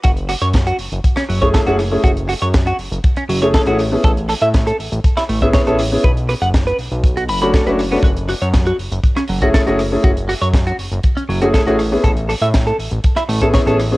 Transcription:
<<
  \new Staff \with { instrumentName = "Clean electric guitar" } { \time 4/4 \key fis \minor \tempo 4 = 120 fis'16 r16 fis'16 cis''16 r16 fis'16 r8. cis'16 fis16 cis''16 a'16 fis'16 r8 | fis'16 r16 fis'16 cis''16 r16 fis'16 r8. cis'16 fis16 cis''16 a'16 fis'16 r8 | a'16 r16 a'16 e''16 r16 a'16 r8. e'16 a16 e''16 cis''16 a'16 r8 | b'16 r16 b'16 fis''16 r16 b'16 r8. fis'16 b''16 b''16 a'16 b'16 r16 b16 |
fis'16 r16 fis'16 cis''16 r16 fis'16 r8. cis'16 fis16 fis'16 a'16 fis'16 r8 | fis'16 r16 fis'16 cis''16 r16 fis'16 r8. cis'16 fis16 fis'16 a'16 fis'16 r8 | a'16 r16 a'16 e''16 r16 a'16 r8. e'16 a16 a'16 cis''16 a'16 r8 | }
  \new Staff \with { instrumentName = "Grand piano" } { \time 4/4 \key fis \minor r2 r8. <a cis' e' gis'>8 <a cis' e' gis'>16 r16 <a cis' e' gis'>16 | r2 r8. <a cis' e' gis'>8 <a cis' e' gis'>16 r16 <b cis' e' gis'>16 | r2 r8. <b cis' e' gis'>8 <b cis' e' gis'>16 r16 <b cis' e' gis'>16 | r2 r8. <a cis' d' fis'>8 <a cis' d' fis'>16 r16 <a cis' d' fis'>16 |
r2 r8. <a cis' e' gis'>8 <a cis' e' gis'>16 r16 <a cis' e' gis'>16 | r2 r8. <a cis' e' gis'>8 <a cis' e' gis'>16 r16 <b cis' e' gis'>16 | r2 r8. <b cis' e' gis'>8 <b cis' e' gis'>16 r16 <b cis' e' gis'>16 | }
  \new Staff \with { instrumentName = "Analog synth bass" } { \clef bass \time 4/4 \key fis \minor fis,,8 r16 fis,8 r16 fis,,16 fis,,16 r8 fis,,8 r16 fis,,8 r16 | fis,,8 r16 fis,8 r16 fis,,16 fis,,16 r8 fis,,8 r16 a,,8 r16 | a,,8 r16 a,8 r16 a,,16 a,,16 r8 a,,8 r16 a,,8 r16 | b,,8 r16 fis,,8 r16 b,,16 b,,8. fis,,8 r16 fis,,8 r16 |
fis,,8 r16 fis,8 r16 fis,,16 fis,,16 r8 fis,,8 r16 fis,,8 r16 | fis,,8 r16 fis,8 r16 fis,,16 fis,,16 r8 fis,,8 r16 a,,8 r16 | a,,8 r16 a,8 r16 a,,16 a,,16 r8 a,,8 r16 a,,8 r16 | }
  \new DrumStaff \with { instrumentName = "Drums" } \drummode { \time 4/4 <hh bd>16 hh16 <hho ss>16 hh16 <hh bd sn>16 hh16 hho16 hh16 <hh bd>16 <hh ss sn>16 hho16 <hh bd>16 <hh bd sn>16 hh16 <hho ss>8 | <hh bd>16 hh16 <hho ss>16 hh16 <hh bd sn>16 hh16 hho16 hh16 <hh bd>16 hh16 hho16 hh16 <hh bd sn>16 hh16 <hho ss>8 | <hh bd>16 hh16 <hho ss>16 hh16 <hh bd sn>16 hh16 hho16 hh16 <hh bd>16 <hh ss sn>16 hho16 <hh bd>16 <hh bd sn>16 hh16 <hho ss>8 | bd16 hh16 <hho ss>16 hh16 <hh bd sn>16 hh16 hho16 hh16 <hh bd>16 hh16 hho16 hh16 <hh bd sn>16 hh16 <hho ss>8 |
<hh bd>16 hh16 <hho ss>16 hh16 <hh bd sn>16 hh16 hho16 hh16 <hh bd>16 <hh ss sn>16 hho16 <hh bd>16 <hh bd sn>16 hh16 <hho ss>8 | <hh bd>16 hh16 <hho ss>16 hh16 <hh bd sn>16 hh16 hho16 hh16 <hh bd>16 hh16 hho16 hh16 <hh bd sn>16 hh16 <hho ss>8 | <hh bd>16 hh16 <hho ss>16 hh16 <hh bd sn>16 hh16 hho16 hh16 <hh bd>16 <hh ss sn>16 hho16 <hh bd>16 <hh bd sn>16 hh16 <hho ss>8 | }
>>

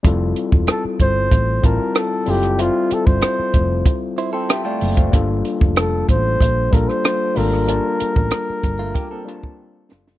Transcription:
<<
  \new Staff \with { instrumentName = "Flugelhorn" } { \time 4/4 \key f \major \tempo 4 = 94 r4 a'8 c''4 bes'8 a'8 g'8 | f'8 a'16 c''4. r4. r16 | r4 a'8 c''4 bes'16 c''8. bes'8~ | bes'2.~ bes'8 r8 | }
  \new Staff \with { instrumentName = "Clean electric guitar" } { \time 4/4 \key f \major r1 | r2 r8 <e' c''>16 <c' a'>16 g'16 <a f'>8. | r1 | r4. r16 <a f'>16 <bes g'>16 <c' a'>4. r16 | }
  \new Staff \with { instrumentName = "Tine electric piano" } { \time 4/4 \key f \major << { r1 | r2 r8. <g'' c'''>16 <e'' a''>16 <d'' g''>8 <c'' f''>16~ | <c'' f''>16 r2. r8. | r1 | } \\ { <g c' e' f' a'>4. r4 <g c' e' f' a''>8 r8 <g c' e' f' a'>8 | <g c' f' c'' e''>4. r2 r8 | <g bes d' f' a'>4. r4 <g bes d' f' a'>8 r8 <g bes d' f' a'>8 | <g bes d' f' a''>4. r4 <g bes d' f' a''>8 r8 <g bes d' f' a'>8 | } >> }
  \new Staff \with { instrumentName = "Fingered electric bass" } { \clef bass \time 4/4 \key f \major f,,8 r16 e,,16 r8 g,,8 a,,8 a,,16 r8. fis,,8~ | fis,,16 r8 g,,16 r8 f,,8 r4. fis,,8 | g,,8 r16 f,,8. a,,8 bes,,8 bes,,16 r8. aes,,8~ | aes,,16 r8 a,,16 r8 g,,8 r4. fis,,8 | }
  \new DrumStaff \with { instrumentName = "Drums" } \drummode { \time 4/4 <hh bd>8 hh16 bd16 <hh ss>8 <hh bd>8 <hh bd>8 <hh bd>8 <hh ss>8 hho16 <hh ss>16 | hh8 hh16 bd16 <hh ss>8 <hh bd>8 <hh bd>8 hh8 <hh ss>8 hho16 <hh bd>16 | <hh bd>8 hh16 bd16 <hh ss>8 <hh bd>8 <hh bd>8 <hh bd>16 ss16 <hh ss>8 hho16 ss16 | hh8 hh16 bd16 <hh ss>8 <hh bd>8 <hh bd>8 hh16 bd16 r8 sn16 sn16 | }
>>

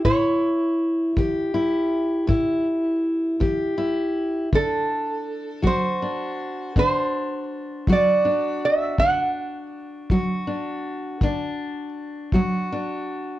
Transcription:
<<
  \new Staff \with { instrumentName = "Resonator guitar played with a steel bar" } { \time 12/8 \key d \major \tempo 4. = 54 cis''2 r1 | a'4. c''4. c''4. d''4 e''8 | fis''4 r1 r4 | }
  \new Staff \with { instrumentName = "Steel-string acoustic guitar" } { \time 12/8 \key d \major << { e'4. g'8 e'4 e'4. g'8 e'4 | d'4. fis'8 d'4 d'4. fis'8 d'4 | d'4. fis'8 d'4 d'4. fis'8 d'4 | } \\ { a,4 r8 e4 r8 a,4 r8 e4 r8 | d4 r8 fis4 r8 d4 r8 fis4 r8 | d4 r8 fis4 r8 d4 r8 fis4 r8 | } >> }
  \new DrumStaff \with { instrumentName = "Drums" } \drummode { \time 12/8 bd4. bd4. bd4. bd4. | bd4. bd4. bd4. bd4. | bd4. bd4. bd4. bd4. | }
>>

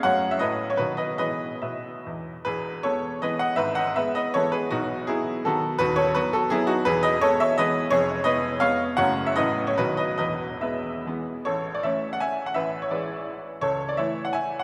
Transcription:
<<
  \new Staff \with { instrumentName = "Grand piano" } { \time 3/4 \key e \major \tempo 4 = 163 <cis'' fis''>8. e''16 <b' dis''>8. cis''16 <fis' b'>8 <b' dis''>8 | <b' dis''>4 <b' e''>4 r4 | <gis' b'>4 <a' cis''>4 <b' dis''>8 <dis'' fis''>8 | <b' e''>8 <dis'' fis''>8 <b' e''>8 <b' dis''>8 <a' cis''>8 <gis' b'>8 |
<dis' fis'>4 <e' gis'>4 <fis' a'>4 | <fis' b'>8 <a' cis''>8 <fis' b'>8 <fis' a'>8 <e' gis'>8 <dis' fis'>8 | <gis' b'>8 <b' dis''>8 <a' cis''>8 <cis'' e''>8 <b' dis''>4 | <gis' cis''>4 <b' dis''>4 <cis'' eis''>4 |
<cis'' fis''>8. e''16 <b' dis''>8. cis''16 <fis' b'>8 <b' dis''>8 | <b' dis''>4 <b' e''>4 r4 | \key a \major <a' cis''>8. d''16 <cis'' e''>8. fis''16 <e'' gis''>8. fis''16 | <b' e''>8. cis''16 <b' d''>4. r8 |
<a' cis''>8. d''16 <cis'' e''>8. fis''16 <e'' gis''>8. fis''16 | }
  \new Staff \with { instrumentName = "Grand piano" } { \clef bass \time 3/4 \key e \major <fis, fis a cis'>4 <a, fis a cis'>4 <b, dis fis b>4 | <e gis b>4 b,4 e,4 | <e,, e,>4 <gis b>4 <e gis b>4 | <gis,, gis,>4 <gis b>4 <e gis b>4 |
<b,, b,>4 <fis b>4 <dis fis b>4 | <dis,, dis,>4 <fis b>4 <fis b>4 | <e,, e,>4 <gis b>4 <e gis b>4 | <eis,, eis,>4 <gis b>4 <gis b>4 |
<fis,, fis, fis a cis'>4 <a,, a, fis a cis'>4 <b,, b, dis fis b>4 | <e,, e,>4 <gis b>4 <e gis b>4 | \key a \major a,,4 <e a cis'>2 | a,,4 <e gis e'>2 |
cis,4 <e a e'>2 | }
>>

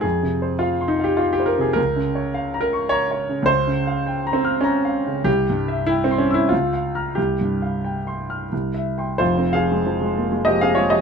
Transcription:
\new Staff \with { instrumentName = "Grand piano" } { \time 3/4 \key f \minor \tempo 4 = 100 << { \tuplet 3/2 { f,8 c8 c''8 f''8 c'''8 f''8 c'''8 c''8 c8 } | \tuplet 3/2 { des,8 des8 des''8 f''8 bes''8 des'''8 bes''8 des''8 des8 } | \tuplet 3/2 { des,8 des8 f''8 g''8 bes''8 f'''8 bes''8 f''8 des8 } | \tuplet 3/2 { c,8 g,8 e''8 g''8 c'''8 e'''8 des,8 f''8 <bes'' f'''>8 } |
\tuplet 3/2 { c,8 g,8 f''8 g''8 c'''8 f'''8 c,8 e''8 <g'' c'''>8 } | <f,, f,>16 c'16 f16 aes16 f16 aes16 bes16 aes16 f16 c'16 aes16 f16 | } \\ { aes'4 f'8 ees'16 g'16 f'16 g'16 bes'16 aes'16 | bes'4. bes'8 des''4 | c''4. c'8 des'4 | g'4 e'16 c'16 des'16 e'16 f'4 |
g'2 r4 | <f' c''>8 <aes' f''>4. <g' ees''>16 <aes' f''>16 <f' des''>16 <g' ees''>16 | } >> }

